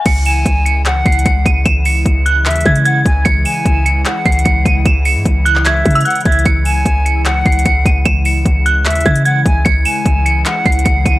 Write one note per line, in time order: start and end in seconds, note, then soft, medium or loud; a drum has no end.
0.06 0.44 C#2 loud
0.06 9.62 C#3 medium
0.06 9.62 E3 medium
0.06 6.42 G#3 medium
0.06 9.62 E4 medium
0.06 0.25 C#7 loud
0.06 kick loud
0.06 closed hi-hat medium
0.06 crash loud
0.25 0.82 G#5 medium
0.25 0.63 E7 medium
0.25 open hi-hat medium
0.46 1.03 C#2 loud
0.46 kick medium
0.46 closed hi-hat medium
0.66 1.03 C#7 medium
0.66 closed hi-hat medium
0.86 1.62 F#5 loud
0.86 clap loud
0.86 closed hi-hat medium
1.06 1.25 C#2 loud
1.06 1.25 C7 medium
1.06 kick medium
1.06 closed hi-hat soft
1.12 closed hi-hat medium
1.19 closed hi-hat medium
1.26 1.45 C#2 loud
1.26 1.45 C#7 medium
1.26 kick loud
1.26 closed hi-hat medium
1.46 1.65 C#2 loud
1.46 1.65 D#7 medium
1.46 kick loud
1.46 closed hi-hat medium
1.65 2.04 C#2 loud
1.65 1.84 E7 loud
1.65 kick loud
1.65 closed hi-hat medium
1.85 2.23 C#7 medium
1.85 open hi-hat medium
2.06 2.47 C#2 loud
2.06 kick medium
2.06 closed hi-hat medium
2.26 2.45 F#6 medium
2.26 closed hi-hat medium
2.46 2.65 D#2 loud
2.46 2.83 E5 medium
2.46 clap loud
2.46 closed hi-hat medium
2.51 closed hi-hat medium
2.56 closed hi-hat medium
2.61 closed hi-hat medium
2.66 3.04 C#3 loud
2.66 2.84 G#6 medium
2.66 kick medium
2.66 closed hi-hat soft
2.76 closed hi-hat medium
2.85 3.05 F#5 medium
2.85 3.23 G#6 medium
2.85 closed hi-hat medium
3.06 3.25 C#2 loud
3.06 3.25 G#5 medium
3.06 kick loud
3.06 closed hi-hat medium
3.25 3.45 C#2 loud
3.25 3.44 C#7 loud
3.25 kick loud
3.25 closed hi-hat medium
3.45 4.02 G#5 medium
3.45 3.83 E7 medium
3.45 open hi-hat medium
3.65 4.04 C#2 loud
3.65 kick medium
3.65 closed hi-hat medium
3.86 4.23 C#7 medium
3.86 closed hi-hat medium
4.05 4.82 F#5 medium
4.05 clap loud
4.05 closed hi-hat medium
4.26 4.45 C#2 loud
4.26 4.45 C7 medium
4.26 kick medium
4.26 closed hi-hat soft
4.32 closed hi-hat medium
4.39 closed hi-hat medium
4.45 4.65 C#2 loud
4.45 4.64 C#7 medium
4.45 kick loud
4.45 closed hi-hat medium
4.65 4.85 C#2 loud
4.65 4.84 D#7 medium
4.65 kick loud
4.65 closed hi-hat medium
4.86 5.17 C#2 loud
4.86 5.05 E7 loud
4.86 kick loud
4.86 closed hi-hat medium
5.05 5.43 C#7 medium
5.05 open hi-hat medium
5.16 5.25 G#2 loud
5.25 5.83 C#2 loud
5.25 kick medium
5.25 closed hi-hat medium
5.46 5.64 F#6 medium
5.46 closed hi-hat medium
5.56 clap medium
5.65 6.03 E5 medium
5.65 5.94 G#6 medium
5.65 clap loud
5.65 closed hi-hat medium
5.86 6.05 C#3 loud
5.86 kick medium
5.86 closed hi-hat medium
5.91 closed hi-hat medium
5.95 6.05 E6 medium
5.95 closed hi-hat medium
6.01 closed hi-hat medium
6.05 6.25 F#5 medium
6.05 6.24 F#6 medium
6.05 closed hi-hat medium
6.11 closed hi-hat medium
6.16 closed hi-hat medium
6.21 closed hi-hat soft
6.25 6.45 C#2 loud
6.25 6.45 E5 medium
6.25 6.45 G#6 medium
6.25 kick loud
6.25 closed hi-hat medium
6.32 closed hi-hat medium
6.39 closed hi-hat medium
6.46 6.84 C#2 loud
6.46 11.19 G#3 medium
6.46 6.65 C#7 loud
6.46 kick loud
6.46 closed hi-hat medium
6.65 7.22 G#5 medium
6.65 7.03 E7 medium
6.65 open hi-hat medium
6.86 7.43 C#2 loud
6.86 kick medium
6.86 closed hi-hat medium
7.06 7.43 C#7 medium
7.06 closed hi-hat medium
7.25 8.02 F#5 loud
7.25 clap loud
7.25 closed hi-hat medium
7.46 7.65 C#2 loud
7.46 7.65 C7 medium
7.46 kick medium
7.46 closed hi-hat soft
7.52 closed hi-hat medium
7.59 closed hi-hat medium
7.66 7.85 C#2 loud
7.66 7.85 C#7 medium
7.66 kick loud
7.66 closed hi-hat medium
7.85 8.05 C#2 loud
7.85 8.05 D#7 medium
7.85 kick loud
7.85 closed hi-hat medium
8.05 8.44 C#2 loud
8.05 8.24 E7 loud
8.05 kick loud
8.05 closed hi-hat medium
8.25 8.63 C#7 medium
8.25 open hi-hat medium
8.46 8.87 C#2 loud
8.46 kick medium
8.46 closed hi-hat medium
8.66 8.85 F#6 medium
8.66 closed hi-hat medium
8.85 9.05 D#2 loud
8.85 9.23 E5 medium
8.85 clap loud
8.85 closed hi-hat medium
8.90 closed hi-hat medium
8.96 closed hi-hat medium
9.01 closed hi-hat medium
9.06 9.44 C#3 loud
9.06 9.24 G#6 medium
9.06 kick medium
9.16 closed hi-hat medium
9.25 9.45 F#5 medium
9.25 9.63 G#6 medium
9.25 closed hi-hat medium
9.46 9.65 C#2 loud
9.46 9.65 G#5 medium
9.46 kick loud
9.46 closed hi-hat medium
9.65 9.85 C#2 loud
9.65 11.19 C#3 medium
9.65 11.19 E3 medium
9.65 11.19 E4 medium
9.65 9.84 C#7 loud
9.65 kick loud
9.65 closed hi-hat medium
9.85 10.42 G#5 medium
9.85 10.23 E7 medium
9.85 open hi-hat medium
10.06 10.44 C#2 loud
10.06 kick medium
10.06 closed hi-hat medium
10.26 10.63 C#7 medium
10.26 closed hi-hat medium
10.46 11.19 F#5 medium
10.46 clap loud
10.46 closed hi-hat medium
10.66 10.85 C#2 loud
10.66 10.85 C7 medium
10.66 kick medium
10.66 closed hi-hat soft
10.72 closed hi-hat medium
10.79 closed hi-hat medium
10.85 11.05 C#2 loud
10.85 11.04 C#7 medium
10.85 kick loud
10.85 closed hi-hat medium
11.06 11.19 C#2 loud
11.06 11.19 D#7 medium
11.06 kick loud
11.06 closed hi-hat medium